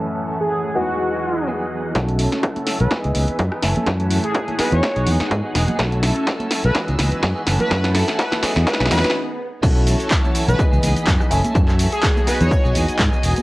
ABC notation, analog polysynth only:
X:1
M:4/4
L:1/16
Q:"Swing 16ths" 1/4=125
K:Bmix
V:1 name="Analog polysynth"
z3 G3 F6 z4 | z6 z B z8 | z3 G3 B c3 z6 | z6 z B z6 z B |
B z3 B z3 B z B z4 z | z6 z B z8 | z3 G3 B c3 z6 |]